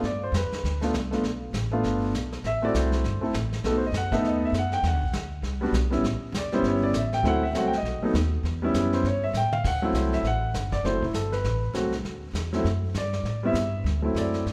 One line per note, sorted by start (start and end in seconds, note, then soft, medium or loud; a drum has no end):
0.03 0.31 G2 medium
0.03 0.22 D5 medium
0.03 brush sweep soft
0.03 snare soft
0.23 0.34 C5 medium
0.32 0.50 F2 medium
0.32 snare medium
0.32 hi-hat pedal medium
0.37 0.80 B4 medium
0.52 muted upright bass stroke soft
0.52 snare soft
0.64 0.93 D2 medium
0.64 brush sweep soft
0.64 snare soft
0.81 0.92 A3 medium
0.81 0.93 B3 medium
0.81 0.93 D4 medium
0.81 0.94 F4 medium
0.81 snare medium
0.94 1.23 C2 medium
0.94 snare medium
0.94 hi-hat pedal medium
1.11 1.22 A3 medium
1.11 1.23 B3 medium
1.11 1.23 D4 medium
1.11 1.23 F4 medium
1.11 snare soft
1.23 1.53 B1 medium
1.23 brush sweep soft
1.23 snare soft
1.53 1.83 A1 medium
1.53 snare medium
1.53 hi-hat pedal medium
1.72 2.11 A3 medium
1.72 2.12 B3 medium
1.72 2.12 D4 medium
1.72 2.12 F4 medium
1.83 2.12 G1 medium
1.83 brush sweep medium
1.83 snare soft
2.13 2.43 B1 medium
2.13 snare medium
2.13 hi-hat pedal medium
2.32 snare soft
2.43 2.73 A1 medium
2.43 2.63 E5 loud
2.43 brush sweep soft
2.43 snare soft
2.62 3.02 A3 medium
2.62 3.02 C4 medium
2.62 3.02 E4 medium
2.62 3.03 F#4 medium
2.62 2.75 D5 medium
2.74 3.03 C2 medium
2.74 3.20 C5 medium
2.74 snare medium
2.74 hi-hat pedal medium
2.92 snare soft
3.04 3.21 G1 medium
3.04 brush sweep soft
3.04 snare soft
3.21 3.32 A3 medium
3.21 3.33 C4 medium
3.21 3.33 E4 medium
3.21 3.33 A4 medium
3.21 muted upright bass stroke soft
3.33 3.63 A1 medium
3.33 snare medium
3.33 hi-hat pedal medium
3.53 snare soft
3.64 3.91 B1 medium
3.64 3.81 A3 medium
3.64 3.81 B3 medium
3.64 3.81 D#4 medium
3.64 3.81 F#4 medium
3.64 3.75 A4 medium
3.64 brush sweep soft
3.64 snare soft
3.77 3.85 C5 medium
3.87 3.95 D#5 medium
3.92 4.21 F#2 medium
3.92 snare medium
3.92 hi-hat pedal medium
3.97 4.13 F#5 medium
4.12 4.52 A3 medium
4.12 4.52 B3 medium
4.12 4.52 D#4 medium
4.12 4.53 A4 medium
4.12 4.24 E5 medium
4.12 kick medium
4.12 snare soft
4.22 4.52 D#2 medium
4.22 brush sweep soft
4.22 snare soft
4.28 4.44 D#5 medium
4.45 4.55 E5 medium
4.52 4.82 F#2 medium
4.52 snare medium
4.52 hi-hat pedal medium
4.59 4.74 F#5 medium
4.72 4.84 G5 medium
4.72 snare soft
4.83 4.93 E2 medium
4.83 brush sweep soft
4.83 snare soft
4.87 5.72 F#5 medium
4.93 5.02 D2 soft
5.03 5.13 B1 medium
5.13 5.42 D2 medium
5.13 snare medium
5.13 hi-hat pedal medium
5.42 5.72 C2 medium
5.42 brush sweep medium
5.42 snare soft
5.61 5.72 G3 medium
5.61 5.73 B3 medium
5.61 5.73 D4 medium
5.61 5.73 F#4 medium
5.72 6.02 B1 medium
5.72 snare medium
5.72 hi-hat pedal medium
5.90 6.02 G3 medium
5.90 6.02 B3 medium
5.90 6.02 C#4 medium
5.90 6.03 E4 medium
5.90 snare soft
6.02 6.20 A1 medium
6.02 brush sweep soft
6.02 snare soft
6.21 muted upright bass stroke soft
6.32 6.62 E1 medium
6.32 snare medium
6.32 hi-hat pedal medium
6.38 6.54 D5 medium
6.52 6.92 G3 medium
6.52 6.92 B3 medium
6.52 6.92 C#4 medium
6.52 6.93 E4 medium
6.52 6.65 C5 medium
6.52 snare soft
6.62 6.92 G1 medium
6.62 brush sweep medium
6.62 snare soft
6.68 6.84 C#5 medium
6.83 6.95 D5 medium
6.93 7.22 A1 medium
6.93 snare medium
6.93 hi-hat pedal medium
6.97 7.13 E5 medium
7.13 7.25 G5 loud
7.13 snare soft
7.23 7.52 D2 medium
7.23 7.40 F#3 medium
7.23 7.41 A3 medium
7.23 7.41 C4 medium
7.23 7.41 E4 medium
7.23 brush sweep soft
7.23 snare soft
7.28 7.44 F#5 medium
7.43 7.54 E5 medium
7.53 7.82 C2 medium
7.53 7.71 F#3 medium
7.53 7.71 A3 medium
7.53 7.71 C4 medium
7.53 7.72 F#4 medium
7.53 snare medium
7.53 hi-hat pedal medium
7.58 7.66 F#5 medium
7.67 7.76 G5 medium
7.73 snare soft
7.77 8.04 D#5 medium
7.83 8.00 B1 medium
7.83 brush sweep soft
7.83 snare soft
8.01 8.13 F#3 medium
8.01 8.13 A3 medium
8.01 8.14 B3 medium
8.01 8.14 D#4 medium
8.01 muted upright bass stroke soft
8.14 8.43 D#2 medium
8.14 snare medium
8.14 hi-hat pedal medium
8.43 8.73 E2 medium
8.43 brush sweep soft
8.43 snare soft
8.62 9.02 G3 medium
8.62 9.02 B3 medium
8.62 9.02 C#4 medium
8.62 9.03 E4 medium
8.74 9.03 F#2 medium
8.74 snare medium
8.74 hi-hat pedal medium
8.93 9.05 C5 medium
8.93 snare soft
9.04 9.33 G2 medium
9.04 9.23 C#5 medium
9.04 brush sweep soft
9.04 snare soft
9.24 9.35 E5 medium
9.33 9.63 A2 medium
9.33 9.53 G5 medium
9.33 snare soft
9.33 hi-hat pedal medium
9.53 9.64 F5 medium
9.53 high tom medium
9.64 9.92 D2 medium
9.64 9.83 F#5 medium
9.64 brush sweep soft
9.64 kick medium
9.64 snare soft
9.64 crash medium
9.82 10.22 F#3 medium
9.82 10.22 A3 medium
9.82 10.22 C4 medium
9.82 10.23 E4 medium
9.82 9.95 A4 medium
9.93 10.22 C2 medium
9.93 snare medium
9.93 hi-hat pedal medium
9.97 10.14 C5 medium
10.13 10.25 E5 medium
10.13 snare soft
10.23 10.53 A1 medium
10.23 brush sweep soft
10.23 snare soft
10.27 10.71 F#5 medium
10.54 10.82 G1 medium
10.54 snare medium
10.54 hi-hat pedal medium
10.72 10.84 D5 medium
10.72 kick soft
10.72 snare soft
10.83 11.13 F#1 medium
10.83 11.01 F#3 soft
10.83 11.01 A3 soft
10.83 11.01 C4 soft
10.83 11.01 E4 medium
10.83 11.03 C5 medium
10.83 brush sweep soft
10.83 snare soft
11.02 11.14 E4 medium
11.02 kick soft
11.13 11.43 G1 medium
11.13 11.32 A4 medium
11.13 snare medium
11.13 hi-hat pedal medium
11.32 11.72 B4 medium
11.32 snare soft
11.44 11.73 A1 medium
11.44 brush sweep soft
11.44 snare soft
11.74 12.03 C2 medium
11.74 11.91 F#3 medium
11.74 11.91 A3 medium
11.74 11.91 C4 medium
11.74 11.92 F#4 medium
11.74 snare medium
11.74 hi-hat pedal medium
11.92 snare soft
12.03 12.33 D2 medium
12.03 brush sweep soft
12.03 snare soft
12.33 12.63 E2 medium
12.33 snare medium
12.33 hi-hat pedal medium
12.53 12.64 F#3 medium
12.53 12.64 A3 medium
12.53 12.64 C4 medium
12.53 12.65 E4 medium
12.53 snare soft
12.64 12.94 F#2 medium
12.64 brush sweep soft
12.64 snare soft
12.94 13.23 G2 medium
12.94 13.41 D5 medium
12.94 snare medium
12.94 hi-hat pedal medium
13.13 snare soft
13.23 13.53 A2 medium
13.23 brush sweep soft
13.23 snare soft
13.43 13.54 G3 medium
13.43 13.54 B3 medium
13.43 13.55 C4 medium
13.43 13.55 E4 medium
13.43 13.84 E5 medium
13.54 13.83 G2 medium
13.54 snare medium
13.54 hi-hat pedal medium
13.84 14.14 D2 medium
13.84 brush sweep soft
13.84 snare soft
14.02 14.43 F#3 medium
14.02 14.43 A3 medium
14.02 14.43 C4 medium
14.02 14.44 E4 medium
14.15 14.44 F#2 medium
14.15 14.53 D5 medium
14.15 snare medium
14.15 hi-hat pedal medium
14.34 snare soft
14.46 14.53 G2 medium
14.46 brush sweep soft
14.46 snare soft